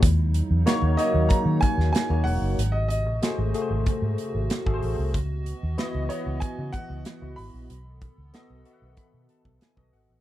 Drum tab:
HH |x-x-x-x-x-x-x-o-|x-x-x-x-x-x-x-o-|x-x-x-x-x-x-x-o-|x-x-x-x-x-x-x-o-|
SD |----o------oo---|----o-------o---|----o-------o---|----o-------o---|
BD |o-------o-o-----|--------o----o--|o-------o-o-----|--o-----o--o-o--|